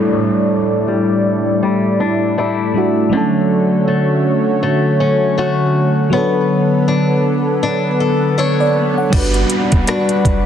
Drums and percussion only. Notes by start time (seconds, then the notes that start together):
9.13 kick, closed hi-hat, crash
9.34 closed hi-hat
9.50 closed hi-hat
9.72 kick, closed hi-hat
9.87 cross-stick, closed hi-hat
10.09 closed hi-hat
10.25 kick, closed hi-hat